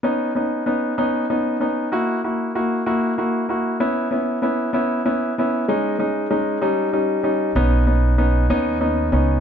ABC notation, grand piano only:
X:1
M:6/8
L:1/8
Q:3/8=64
K:B
V:1 name="Grand piano"
[B,CD] [B,CD] [B,CD] [B,CD] [B,CD] [B,CD] | [A,EF] [A,EF] [A,EF] [A,EF] [A,EF] [A,EF] | [B,CE] [B,CE] [B,CE] [B,CE] [B,CE] [B,CE] | [G,CD] [G,CD] [G,CD] [=G,CD] [G,CD] [G,CD] |
[B,CD] [B,CD] [B,CD] [B,CD] [B,CD] [B,CD] |]